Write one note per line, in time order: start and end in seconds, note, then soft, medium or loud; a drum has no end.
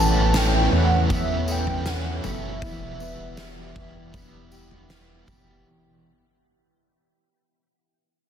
0.00 0.68 A1 loud
0.00 1.10 A2 medium
0.00 1.09 E3 medium
0.00 2.62 E3 medium
0.00 2.58 A3 medium
0.00 1.10 B3 medium
0.00 1.10 C#4 medium
0.00 2.59 C#4 medium
0.00 1.12 E4 medium
0.00 5.62 E4 medium
0.00 5.62 B4 medium
0.00 0.39 A5 medium
0.34 1.47 A4 medium
0.34 0.76 G5 loud
0.34 snare loud
0.34 tambourine medium
0.72 2.20 E2 loud
0.72 1.85 C#4 medium
0.72 1.11 F#5 medium
1.09 2.61 E3 medium
1.09 3.00 B3 medium
1.09 2.25 B3 medium
1.09 2.23 C#4 medium
1.09 2.22 E4 medium
1.09 1.47 E5 loud
1.09 kick loud
1.09 floor tom medium
1.09 tambourine medium
1.48 2.23 A4 medium
1.48 1.90 G5 medium
1.48 tambourine medium
1.67 floor tom medium
1.86 2.70 C#4 medium
1.86 2.25 F#5 loud
1.86 snare loud
1.86 tambourine medium
2.22 2.60 F#1 medium
2.22 2.62 B3 soft
2.22 2.62 C#4 medium
2.22 2.61 E4 medium
2.22 2.70 A4 medium
2.22 floor tom medium
2.22 tambourine medium
2.27 4.87 E5 medium
2.59 3.16 E1 loud
2.59 6.09 E2 medium
2.59 6.11 B2 medium
2.59 4.12 E3 medium
2.59 6.12 E3 medium
2.59 5.63 G3 medium
2.59 4.13 G3 medium
2.59 5.63 B3 medium
2.59 kick loud
2.59 floor tom loud
2.59 tambourine medium
2.64 4.15 B3 loud
2.64 4.15 E4 medium
3.00 4.14 B3 medium
3.00 tambourine medium
3.19 3.73 E1 loud
3.37 4.52 G4 medium
3.37 snare loud
3.37 tambourine loud
3.76 4.12 E1 loud
3.76 4.90 E4 medium
3.76 kick loud
4.12 5.24 E1 loud
4.12 5.29 E3 medium
4.12 5.28 G3 medium
4.12 6.24 B3 medium
4.12 5.27 B3 medium
4.12 5.25 E4 medium
4.12 kick loud
4.12 floor tom medium
4.12 tambourine medium
4.52 5.27 G4 medium
4.52 tambourine medium
4.71 floor tom medium
4.90 6.24 E4 medium
4.90 snare loud
4.90 tambourine medium
5.26 5.64 F#1 medium
5.26 5.67 E3 soft
5.26 5.66 G3 medium
5.26 5.66 B3 medium
5.26 5.65 E4 medium
5.26 6.24 G4 medium
5.26 kick loud
5.26 floor tom medium
5.26 tambourine medium